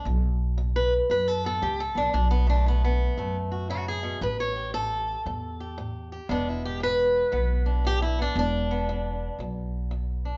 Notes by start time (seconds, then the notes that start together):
Already playing: B3
0.05 B1 B2
0.58 B2
0.76 B4
1.10 F#2 B2 B4
1.28 A4
1.45 B3 A4
1.62 C#2 B2 G4
1.80 A4
1.95 B1 B3 D4
2.13 B1 B2 D4
2.31 B3
2.47 A3 D4
2.66 B2 B3
2.84 B3
3.17 F#2 B2 A3
3.52 F#4
3.70 C#3 F#4
3.88 G#4
4.03 B2
4.21 A1 A2 B4
4.40 C#5
4.56 G4
4.74 A2 A4
5.26 E2 A2
5.60 G4
5.78 A2
6.12 G4
6.29 E1 E2 G#3 B3 D4
6.49 E4
6.65 G4
6.80 E2 B4
7.32 B1 E2 B3
7.66 D4
7.85 E2 G4
8.02 E4
8.19 B3 D4
8.35 E1 E2 D4
8.71 B3
8.89 E2
9.39 B1 E2
9.91 E2
10.25 D4